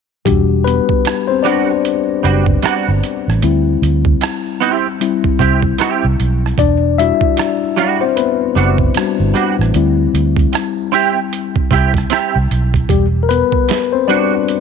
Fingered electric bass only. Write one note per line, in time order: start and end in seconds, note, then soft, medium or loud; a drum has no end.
0.27 0.79 E1 medium
0.90 muted fingered electric bass stroke soft
2.24 2.57 F#1 medium
2.64 muted fingered electric bass stroke soft
2.88 3.00 G1 medium
3.28 3.40 A1 medium
3.43 3.75 D2 medium
3.82 4.14 D2 medium
5.25 muted fingered electric bass stroke soft
5.40 5.72 C2 medium
6.05 6.16 C2 medium
6.20 6.52 B1 medium
6.58 7.11 E1 medium
7.22 muted fingered electric bass stroke soft
8.56 8.88 F#1 medium
8.96 muted fingered electric bass stroke soft
9.20 9.32 G1 medium
9.59 9.71 A1 medium
9.74 10.06 D2 loud
10.14 10.46 D2 medium
11.56 muted fingered electric bass stroke soft
11.71 12.04 C2 medium
12.36 12.48 C2 medium
12.51 12.83 B1 medium
12.90 13.42 E1 medium
13.53 muted fingered electric bass stroke soft